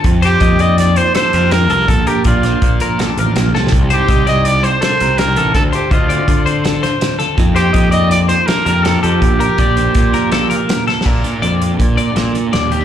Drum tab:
CC |------------------------------|------------------------------|------------------------------|------------------------------|
HH |x--x--x--x--x--x--x--x--x--x--|x--x--x--x--x--x--x--x--x-----|x--x--x--x--x--x--x--x--x--x--|x--x--x--x--x--x--x--x--x--x--|
SD |------------o-----o-----o-----|---------o--------o-----o--o-o|---------o--------o-----o-----|------------------o--o--o--o--|
BD |o-----o-----------------------|o-----o-----o-----------------|o-----o-----------------------|o-----o-----o-----------------|

CC |------------------------------|------------------------------|x-----------------------------|
HH |x--x--x--x--x--x--x--x--x--x--|x--x--x--x--x--x--x--x--x-----|---x--x--x--x--x--x--x--x--x--|
SD |------------------o-----o-----|------------o--o--o-----o--o-o|------------------o-----o-----|
BD |o-----o-----------------------|o-----o-----o-----------------|o-----------o-----------------|